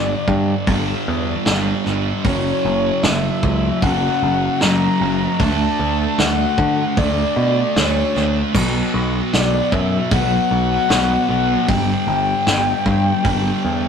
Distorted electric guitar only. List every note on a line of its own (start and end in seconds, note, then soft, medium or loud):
0.00 0.66 G2 loud
0.00 0.68 D3 medium
0.00 0.69 G3 medium
0.67 1.45 G2 loud
0.67 1.46 D3 loud
0.67 1.48 G3 loud
1.46 2.22 G2 medium
1.46 1.87 D3 medium
1.46 1.85 G3 medium
1.86 2.24 D3 medium
1.86 2.23 G3 medium
2.25 3.82 F#2 medium
2.25 3.84 C#3 loud
2.25 3.86 F#3 loud
3.83 4.60 F#2 loud
3.83 4.62 C#3 loud
3.83 4.63 F#3 loud
4.61 5.38 F#2 medium
4.61 5.02 C#3 medium
4.61 5.00 F#3 medium
5.00 5.39 C#3 medium
5.00 5.41 F#3 medium
5.40 6.96 D3 medium
5.40 6.97 A3 medium
5.40 7.00 D4 loud
6.97 7.75 D3 loud
6.97 7.76 A3 loud
6.97 7.78 D4 loud
7.76 8.52 D3 medium
7.76 8.16 A3 medium
7.76 8.14 D4 medium
8.14 8.53 A3 medium
8.14 8.56 D4 medium
8.53 10.09 B2 medium
8.53 10.12 F#3 medium
8.53 10.12 B3 loud
10.10 10.88 B2 loud
10.10 10.90 F#3 loud
10.10 10.91 B3 loud
10.89 11.66 B2 medium
10.89 11.31 F#3 medium
10.89 11.28 B3 medium
11.29 11.70 F#3 medium
11.29 11.66 B3 medium
11.68 13.23 G2 medium
11.68 13.25 D3 medium
11.68 13.26 G3 loud
13.24 13.88 G2 medium
13.24 13.88 D3 loud
13.24 13.88 G3 loud